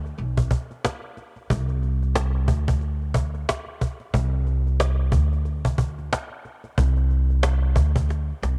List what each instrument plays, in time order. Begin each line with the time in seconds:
Already playing: upright bass D2
0.06 cajon slap
0.18 upright bass B1, cajon slap
0.37 cajon bass
0.51 cajon bass
0.71 cajon slap
0.85 cajon slap
1.02 cajon slap
1.17 cajon slap
1.36 cajon slap
1.50 upright bass C2, cajon bass
1.69 cajon slap
1.83 cajon slap
2.03 cajon slap
2.16 cajon slap
2.34 cajon slap
2.48 upright bass D2, cajon bass
2.68 cajon bass
2.81 cajon slap
3.02 cajon slap
3.14 cajon bass
3.34 cajon slap
3.49 cajon slap
3.66 cajon slap
3.81 cajon bass, cajon slap
4.00 cajon slap
4.14 upright bass C2, cajon bass
4.47 cajon slap
4.67 cajon slap
4.80 cajon slap
4.99 cajon slap
5.12 upright bass D2, cajon bass
5.33 cajon slap
5.45 cajon slap
5.65 cajon bass
5.78 cajon bass
5.99 cajon slap
6.13 cajon slap
6.30 cajon slap
6.45 cajon slap
6.64 cajon slap
6.78 upright bass C2, cajon bass
6.96 cajon slap
6.98 cajon slap
7.11 cajon slap
7.30 cajon slap
7.43 cajon slap
7.62 cajon slap
7.76 upright bass D2, cajon bass
7.96 cajon bass
8.09 cajon slap
8.43 upright bass C2, cajon slap